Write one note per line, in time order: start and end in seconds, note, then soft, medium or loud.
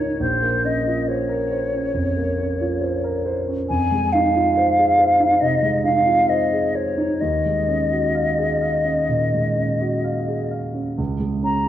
0.00 0.23 G#2 soft
0.00 0.23 A#3 soft
0.00 0.24 D#4 soft
0.00 0.23 F4 soft
0.00 0.23 A#4 soft
0.00 0.20 C#5 medium
0.00 0.23 C#5 soft
0.20 1.92 A#1 soft
0.20 0.67 C5 medium
0.42 0.78 A#3 soft
0.64 1.00 C#4 soft
0.64 1.09 D#5 soft
0.87 1.22 F4 soft
1.08 1.44 C5 soft
1.08 3.41 C#5 medium
1.29 1.65 A#4 soft
1.51 1.87 C5 soft
1.74 2.09 C#4 soft
1.94 2.30 F2 soft
2.17 2.51 A#3 soft
2.38 2.73 C#4 soft
2.60 2.95 F4 soft
2.81 3.16 C5 soft
3.04 3.39 A#4 soft
3.26 3.61 C5 soft
3.48 3.69 C#4 soft
3.69 5.38 F2 soft
3.69 4.14 G#5 medium
3.92 4.26 G#3 soft
4.12 4.48 D#4 soft
4.12 5.42 F5 medium
4.35 4.69 F4 soft
4.57 4.91 C5 soft
4.78 5.12 G#4 soft
4.98 5.33 C5 soft
5.20 5.54 D#4 soft
5.40 5.76 C3 soft
5.40 5.84 D#5 medium
5.63 5.98 G#3 soft
5.84 6.20 D#4 soft
5.84 6.31 F5 medium
6.06 6.42 F4 soft
6.29 6.66 C5 soft
6.29 6.77 D#5 soft
6.52 6.89 G#4 soft
6.75 7.12 C5 soft
6.75 7.22 C#5 medium
6.97 7.21 D#4 soft
7.20 9.06 D#2 soft
7.20 10.53 D#5 medium
7.46 7.82 G#3 soft
7.68 8.05 C#4 soft
7.91 8.28 F#4 soft
8.15 8.52 F5 soft
8.38 8.76 G#4 soft
8.61 9.00 F5 soft
8.84 9.24 C#4 soft
9.09 9.48 A#2 soft
9.34 9.73 G#3 soft
9.56 9.95 C#4 soft
9.81 10.19 F#4 soft
10.04 10.43 F5 soft
10.28 10.66 G#4 soft
10.51 10.89 F5 soft
10.74 10.98 C#4 soft
10.98 11.69 C#2 soft
11.20 11.57 G#3 soft
11.43 11.69 C#4 soft
11.43 11.69 A#5 medium